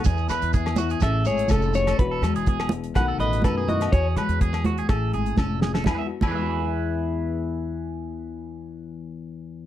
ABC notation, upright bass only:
X:1
M:4/4
L:1/16
Q:1/4=124
K:E
V:1 name="Upright bass" clef=bass
E,,2 z E,,4- E,, A,,,2 G,,,2 =F,,,4 | E,,,2 E,, E,,,4- E,,, B,,,2 A,,,2 F,,4 | E,,2 E, E,,4- E,, A,,,2 G,,,2 =F,,,4 | E,, z2 E,,12- E,,- |
E,,16 |]